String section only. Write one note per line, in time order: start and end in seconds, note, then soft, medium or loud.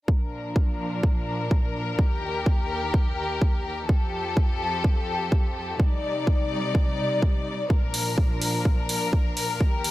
0.08 1.97 A#2 medium
0.08 1.97 F3 medium
0.08 1.97 D4 medium
0.08 3.85 A#4 medium
1.99 3.87 D#2 medium
1.99 3.87 D#3 medium
1.99 3.87 G4 medium
3.89 5.78 F2 medium
3.89 5.78 F3 medium
3.89 5.78 G4 medium
3.89 5.78 A4 medium
5.80 7.68 C3 medium
5.80 7.68 G3 medium
5.80 7.68 D#4 medium
5.80 7.68 D5 medium
7.70 9.59 A#2 medium
7.70 9.59 F3 medium
7.70 9.59 D4 medium
7.70 9.91 A#4 medium
9.60 9.91 D#2 medium
9.60 9.91 D#3 medium
9.60 9.91 G4 medium